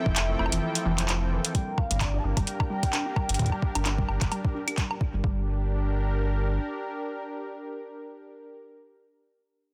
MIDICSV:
0, 0, Header, 1, 7, 480
1, 0, Start_track
1, 0, Tempo, 461538
1, 1609, Time_signature, 4, 2, 24, 8
1, 10128, End_track
2, 0, Start_track
2, 0, Title_t, "Soft synth lead"
2, 0, Program_c, 0, 80
2, 0, Note_on_c, 0, 76, 109
2, 1370, Note_off_c, 0, 76, 0
2, 1610, Note_on_c, 0, 79, 114
2, 1850, Note_on_c, 0, 77, 102
2, 1866, Note_off_c, 0, 79, 0
2, 2091, Note_on_c, 0, 74, 92
2, 2106, Note_off_c, 0, 77, 0
2, 2266, Note_on_c, 0, 81, 74
2, 2281, Note_off_c, 0, 74, 0
2, 2330, Note_on_c, 0, 79, 112
2, 2346, Note_off_c, 0, 81, 0
2, 4970, Note_off_c, 0, 79, 0
2, 10128, End_track
3, 0, Start_track
3, 0, Title_t, "Analog synth pad"
3, 0, Program_c, 1, 89
3, 0, Note_on_c, 1, 53, 81
3, 0, Note_on_c, 1, 60, 74
3, 0, Note_on_c, 1, 64, 75
3, 0, Note_on_c, 1, 69, 74
3, 0, Note_on_c, 1, 79, 87
3, 1609, Note_off_c, 1, 53, 0
3, 1609, Note_off_c, 1, 69, 0
3, 1609, Note_on_c, 1, 62, 84
3, 1746, Note_on_c, 1, 70, 83
3, 1823, Note_on_c, 1, 67, 92
3, 2455, Note_off_c, 1, 64, 0
3, 2477, Note_off_c, 1, 79, 0
3, 3157, Note_off_c, 1, 60, 0
3, 5436, Note_off_c, 1, 62, 0
3, 5448, Note_off_c, 1, 67, 0
3, 5449, Note_off_c, 1, 70, 0
3, 5449, Note_on_c, 1, 62, 73
3, 5529, Note_on_c, 1, 67, 72
3, 5604, Note_on_c, 1, 70, 75
3, 8803, Note_off_c, 1, 62, 0
3, 8883, Note_off_c, 1, 67, 0
3, 8958, Note_off_c, 1, 70, 0
3, 10128, End_track
4, 0, Start_track
4, 0, Title_t, "Synth texture"
4, 0, Program_c, 2, 99
4, 0, Note_on_c, 2, 58, 90
4, 0, Note_on_c, 2, 84, 90
4, 1598, Note_off_c, 2, 58, 0
4, 1610, Note_on_c, 2, 70, 86
4, 1611, Note_on_c, 2, 58, 84
4, 1620, Note_off_c, 2, 84, 0
4, 5460, Note_off_c, 2, 70, 0
4, 5461, Note_off_c, 2, 58, 0
4, 10128, End_track
5, 0, Start_track
5, 0, Title_t, "Synth pluck"
5, 0, Program_c, 3, 84
5, 63, Note_on_c, 3, 52, 74
5, 133, Note_off_c, 3, 52, 0
5, 303, Note_on_c, 3, 57, 77
5, 373, Note_off_c, 3, 57, 0
5, 409, Note_on_c, 3, 57, 76
5, 462, Note_off_c, 3, 57, 0
5, 543, Note_on_c, 3, 52, 78
5, 644, Note_off_c, 3, 52, 0
5, 889, Note_on_c, 3, 52, 103
5, 942, Note_off_c, 3, 52, 0
5, 1024, Note_on_c, 3, 53, 79
5, 1065, Note_off_c, 3, 53, 0
5, 1130, Note_on_c, 3, 53, 84
5, 1218, Note_off_c, 3, 53, 0
5, 1369, Note_on_c, 3, 52, 80
5, 1497, Note_off_c, 3, 52, 0
5, 1609, Note_on_c, 3, 55, 80
5, 1737, Note_off_c, 3, 55, 0
5, 1984, Note_on_c, 3, 55, 73
5, 2053, Note_off_c, 3, 55, 0
5, 2224, Note_on_c, 3, 62, 75
5, 2293, Note_off_c, 3, 62, 0
5, 2329, Note_on_c, 3, 62, 72
5, 2382, Note_off_c, 3, 62, 0
5, 2464, Note_on_c, 3, 55, 75
5, 2564, Note_off_c, 3, 55, 0
5, 2809, Note_on_c, 3, 55, 75
5, 2898, Note_off_c, 3, 55, 0
5, 3049, Note_on_c, 3, 62, 82
5, 3138, Note_off_c, 3, 62, 0
5, 3184, Note_on_c, 3, 62, 71
5, 3225, Note_off_c, 3, 62, 0
5, 3290, Note_on_c, 3, 55, 73
5, 3417, Note_off_c, 3, 55, 0
5, 3664, Note_on_c, 3, 55, 74
5, 3733, Note_off_c, 3, 55, 0
5, 3904, Note_on_c, 3, 62, 73
5, 3973, Note_off_c, 3, 62, 0
5, 4010, Note_on_c, 3, 62, 80
5, 4063, Note_off_c, 3, 62, 0
5, 4144, Note_on_c, 3, 55, 72
5, 4244, Note_off_c, 3, 55, 0
5, 4489, Note_on_c, 3, 55, 79
5, 4578, Note_off_c, 3, 55, 0
5, 4729, Note_on_c, 3, 62, 74
5, 4818, Note_off_c, 3, 62, 0
5, 4864, Note_on_c, 3, 62, 72
5, 4905, Note_off_c, 3, 62, 0
5, 4969, Note_on_c, 3, 55, 81
5, 5097, Note_off_c, 3, 55, 0
5, 5344, Note_on_c, 3, 55, 70
5, 5413, Note_off_c, 3, 55, 0
5, 5449, Note_on_c, 3, 55, 86
5, 5672, Note_off_c, 3, 55, 0
5, 10128, End_track
6, 0, Start_track
6, 0, Title_t, "Sub bass"
6, 0, Program_c, 4, 38
6, 63, Note_on_c, 4, 29, 100
6, 361, Note_off_c, 4, 29, 0
6, 409, Note_on_c, 4, 29, 85
6, 505, Note_off_c, 4, 29, 0
6, 543, Note_on_c, 4, 29, 95
6, 619, Note_off_c, 4, 29, 0
6, 889, Note_on_c, 4, 29, 96
6, 1443, Note_off_c, 4, 29, 0
6, 1983, Note_on_c, 4, 31, 98
6, 2281, Note_off_c, 4, 31, 0
6, 2329, Note_on_c, 4, 31, 81
6, 2425, Note_off_c, 4, 31, 0
6, 2464, Note_on_c, 4, 31, 89
6, 2539, Note_off_c, 4, 31, 0
6, 3423, Note_on_c, 4, 31, 91
6, 3499, Note_off_c, 4, 31, 0
6, 3903, Note_on_c, 4, 31, 95
6, 4201, Note_off_c, 4, 31, 0
6, 4249, Note_on_c, 4, 31, 79
6, 4345, Note_off_c, 4, 31, 0
6, 4384, Note_on_c, 4, 31, 84
6, 4459, Note_off_c, 4, 31, 0
6, 5343, Note_on_c, 4, 31, 90
6, 5419, Note_off_c, 4, 31, 0
6, 5449, Note_on_c, 4, 31, 91
6, 6847, Note_off_c, 4, 31, 0
6, 10128, End_track
7, 0, Start_track
7, 0, Title_t, "Drums"
7, 63, Note_on_c, 9, 36, 106
7, 167, Note_off_c, 9, 36, 0
7, 169, Note_on_c, 9, 39, 116
7, 169, Note_on_c, 9, 42, 69
7, 273, Note_off_c, 9, 39, 0
7, 273, Note_off_c, 9, 42, 0
7, 409, Note_on_c, 9, 76, 41
7, 477, Note_off_c, 9, 76, 0
7, 477, Note_on_c, 9, 76, 58
7, 543, Note_on_c, 9, 42, 66
7, 581, Note_off_c, 9, 76, 0
7, 647, Note_off_c, 9, 42, 0
7, 784, Note_on_c, 9, 42, 56
7, 888, Note_off_c, 9, 42, 0
7, 1024, Note_on_c, 9, 39, 58
7, 1024, Note_on_c, 9, 42, 66
7, 1128, Note_off_c, 9, 39, 0
7, 1128, Note_off_c, 9, 42, 0
7, 1129, Note_on_c, 9, 39, 118
7, 1129, Note_on_c, 9, 42, 55
7, 1233, Note_off_c, 9, 39, 0
7, 1233, Note_off_c, 9, 42, 0
7, 1504, Note_on_c, 9, 42, 68
7, 1608, Note_off_c, 9, 42, 0
7, 1610, Note_on_c, 9, 36, 102
7, 1610, Note_on_c, 9, 42, 52
7, 1714, Note_off_c, 9, 36, 0
7, 1714, Note_off_c, 9, 42, 0
7, 1850, Note_on_c, 9, 36, 116
7, 1850, Note_on_c, 9, 76, 54
7, 1954, Note_off_c, 9, 36, 0
7, 1954, Note_off_c, 9, 76, 0
7, 1984, Note_on_c, 9, 42, 67
7, 2088, Note_off_c, 9, 42, 0
7, 2089, Note_on_c, 9, 36, 100
7, 2090, Note_on_c, 9, 39, 109
7, 2090, Note_on_c, 9, 42, 54
7, 2090, Note_on_c, 9, 76, 78
7, 2193, Note_off_c, 9, 36, 0
7, 2194, Note_off_c, 9, 39, 0
7, 2194, Note_off_c, 9, 42, 0
7, 2194, Note_off_c, 9, 76, 0
7, 2464, Note_on_c, 9, 36, 101
7, 2464, Note_on_c, 9, 42, 63
7, 2464, Note_on_c, 9, 76, 51
7, 2568, Note_off_c, 9, 36, 0
7, 2568, Note_off_c, 9, 42, 0
7, 2568, Note_off_c, 9, 76, 0
7, 2570, Note_on_c, 9, 42, 52
7, 2674, Note_off_c, 9, 42, 0
7, 2704, Note_on_c, 9, 36, 111
7, 2704, Note_on_c, 9, 76, 81
7, 2808, Note_off_c, 9, 36, 0
7, 2808, Note_off_c, 9, 76, 0
7, 2944, Note_on_c, 9, 36, 101
7, 2944, Note_on_c, 9, 42, 64
7, 3048, Note_off_c, 9, 36, 0
7, 3048, Note_off_c, 9, 42, 0
7, 3050, Note_on_c, 9, 39, 113
7, 3050, Note_on_c, 9, 42, 53
7, 3050, Note_on_c, 9, 76, 52
7, 3154, Note_off_c, 9, 39, 0
7, 3154, Note_off_c, 9, 42, 0
7, 3154, Note_off_c, 9, 76, 0
7, 3289, Note_on_c, 9, 36, 98
7, 3290, Note_on_c, 9, 76, 78
7, 3393, Note_off_c, 9, 36, 0
7, 3394, Note_off_c, 9, 76, 0
7, 3424, Note_on_c, 9, 42, 61
7, 3477, Note_off_c, 9, 42, 0
7, 3477, Note_on_c, 9, 42, 51
7, 3529, Note_off_c, 9, 42, 0
7, 3529, Note_on_c, 9, 36, 108
7, 3529, Note_on_c, 9, 42, 51
7, 3556, Note_off_c, 9, 36, 0
7, 3556, Note_on_c, 9, 36, 88
7, 3583, Note_off_c, 9, 36, 0
7, 3583, Note_on_c, 9, 36, 72
7, 3597, Note_off_c, 9, 42, 0
7, 3597, Note_on_c, 9, 42, 34
7, 3610, Note_off_c, 9, 36, 0
7, 3610, Note_on_c, 9, 36, 58
7, 3637, Note_off_c, 9, 36, 0
7, 3637, Note_on_c, 9, 36, 50
7, 3664, Note_on_c, 9, 76, 50
7, 3701, Note_off_c, 9, 42, 0
7, 3741, Note_off_c, 9, 36, 0
7, 3768, Note_off_c, 9, 76, 0
7, 3769, Note_on_c, 9, 36, 101
7, 3873, Note_off_c, 9, 36, 0
7, 3904, Note_on_c, 9, 42, 66
7, 3904, Note_on_c, 9, 76, 76
7, 4008, Note_off_c, 9, 42, 0
7, 4008, Note_off_c, 9, 76, 0
7, 4009, Note_on_c, 9, 39, 116
7, 4009, Note_on_c, 9, 42, 51
7, 4113, Note_off_c, 9, 39, 0
7, 4113, Note_off_c, 9, 42, 0
7, 4144, Note_on_c, 9, 36, 102
7, 4248, Note_off_c, 9, 36, 0
7, 4249, Note_on_c, 9, 76, 50
7, 4353, Note_off_c, 9, 76, 0
7, 4383, Note_on_c, 9, 39, 56
7, 4383, Note_on_c, 9, 42, 63
7, 4384, Note_on_c, 9, 36, 118
7, 4487, Note_off_c, 9, 39, 0
7, 4487, Note_off_c, 9, 42, 0
7, 4488, Note_off_c, 9, 36, 0
7, 4489, Note_on_c, 9, 42, 50
7, 4489, Note_on_c, 9, 76, 73
7, 4593, Note_off_c, 9, 42, 0
7, 4593, Note_off_c, 9, 76, 0
7, 4624, Note_on_c, 9, 36, 98
7, 4728, Note_off_c, 9, 36, 0
7, 4863, Note_on_c, 9, 42, 61
7, 4863, Note_on_c, 9, 76, 46
7, 4967, Note_off_c, 9, 42, 0
7, 4967, Note_off_c, 9, 76, 0
7, 4969, Note_on_c, 9, 36, 96
7, 4969, Note_on_c, 9, 39, 113
7, 4969, Note_on_c, 9, 42, 50
7, 5073, Note_off_c, 9, 36, 0
7, 5073, Note_off_c, 9, 39, 0
7, 5073, Note_off_c, 9, 42, 0
7, 5103, Note_on_c, 9, 76, 73
7, 5207, Note_off_c, 9, 76, 0
7, 5209, Note_on_c, 9, 36, 109
7, 5313, Note_off_c, 9, 36, 0
7, 5449, Note_on_c, 9, 36, 97
7, 5553, Note_off_c, 9, 36, 0
7, 10128, End_track
0, 0, End_of_file